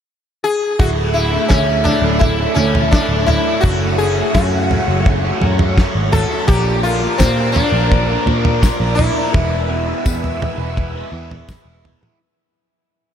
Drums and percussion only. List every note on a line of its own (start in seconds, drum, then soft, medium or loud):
0.80 kick loud
0.80 floor tom medium
1.50 kick loud
1.50 snare medium
1.50 floor tom medium
1.85 floor tom medium
2.21 kick loud
2.21 floor tom medium
2.57 floor tom medium
2.75 floor tom medium
2.93 kick loud
2.93 snare medium
3.28 floor tom medium
3.64 kick loud
3.64 floor tom medium
4.35 kick loud
4.35 snare medium
4.35 floor tom medium
4.71 floor tom medium
5.06 kick loud
5.06 floor tom medium
5.42 floor tom medium
5.59 floor tom medium
5.78 kick loud
5.78 snare medium
6.13 floor tom medium
6.48 kick loud
6.48 floor tom medium
7.20 kick loud
7.20 snare medium
7.20 floor tom medium
7.20 tambourine medium
7.56 floor tom medium
7.92 kick loud
7.92 floor tom medium
8.27 floor tom medium
8.45 floor tom medium
8.63 kick loud
8.63 snare medium
8.63 tambourine medium
8.99 floor tom medium
9.34 kick loud
9.34 floor tom medium
10.06 kick loud
10.06 floor tom medium
10.06 tambourine medium
10.24 floor tom medium
10.42 floor tom medium
10.42 mid tom medium
10.77 kick loud
10.77 floor tom medium
11.31 floor tom medium
11.48 kick loud
11.48 snare medium
11.48 mid tom medium
11.48 tambourine loud
11.85 floor tom medium
12.03 mid tom medium